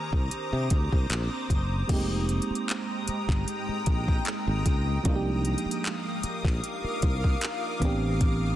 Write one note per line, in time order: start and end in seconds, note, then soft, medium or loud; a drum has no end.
0.00 1.84 D#3 medium
0.00 1.85 A#3 medium
0.00 1.86 C4 medium
0.00 1.86 D4 medium
0.00 1.87 G4 medium
0.00 1.86 C5 medium
0.00 1.85 A#5 medium
0.00 1.86 D6 medium
0.00 1.86 D#6 medium
0.13 0.28 C2 medium
0.13 kick medium
0.31 closed hi-hat medium
0.53 0.67 C3 medium
0.70 0.88 D2 medium
0.70 kick loud
0.70 closed hi-hat medium
0.93 1.07 C2 medium
0.93 kick medium
1.10 1.27 A#1 medium
1.10 clap loud
1.10 closed hi-hat medium
1.50 1.82 F#1 medium
1.50 kick medium
1.50 closed hi-hat medium
1.87 2.38 F1 loud
1.87 1.95 G3 medium
1.87 5.02 G#3 medium
1.87 5.01 A#3 medium
1.87 5.01 C4 medium
1.87 5.02 G5 medium
1.87 5.02 A#5 medium
1.87 5.02 D#6 medium
1.87 kick loud
1.87 closed hi-hat medium
1.87 crash medium
1.92 5.03 G#3 medium
1.92 5.02 D#4 medium
1.92 5.03 G4 medium
2.29 closed hi-hat soft
2.42 closed hi-hat soft
2.50 muted fretless electric bass stroke soft
2.55 closed hi-hat soft
2.69 clap loud
2.69 closed hi-hat medium
3.08 muted fretless electric bass stroke soft
3.08 closed hi-hat medium
3.29 3.43 G1 medium
3.29 kick medium
3.29 clap medium
3.48 closed hi-hat medium
3.69 muted fretless electric bass stroke soft
3.86 4.18 A#1 medium
3.86 kick loud
3.86 closed hi-hat medium
4.08 kick medium
4.25 clap loud
4.25 closed hi-hat medium
4.48 4.62 G#1 medium
4.66 4.97 C#2 medium
4.66 kick medium
4.66 closed hi-hat medium
5.03 5.54 C2 loud
5.03 7.77 F3 medium
5.03 7.77 A#3 medium
5.03 7.78 D4 medium
5.03 7.78 A#4 medium
5.03 7.79 F5 medium
5.03 8.56 D6 medium
5.03 7.79 D#6 medium
5.03 kick loud
5.03 closed hi-hat medium
5.07 7.79 D#4 medium
5.07 5.14 F4 medium
5.15 7.83 G4 medium
5.45 closed hi-hat soft
5.58 closed hi-hat soft
5.66 muted fretless electric bass stroke soft
5.71 closed hi-hat soft
5.85 clap loud
5.85 closed hi-hat medium
6.23 muted fretless electric bass stroke soft
6.23 closed hi-hat medium
6.45 6.59 A#1 medium
6.45 kick loud
6.45 clap medium
6.64 closed hi-hat medium
6.84 muted fretless electric bass stroke soft
7.02 7.34 C2 medium
7.02 kick medium
7.02 closed hi-hat medium
7.24 kick medium
7.41 clap loud
7.41 closed hi-hat medium
7.80 8.56 A1 loud
7.80 8.56 E3 medium
7.80 8.56 B3 medium
7.80 8.56 C4 medium
7.80 8.56 G5 medium
7.80 8.56 C6 medium
7.80 kick medium
7.80 closed hi-hat medium
7.84 8.56 D4 medium
7.84 8.56 G4 medium
8.21 kick loud
8.21 closed hi-hat medium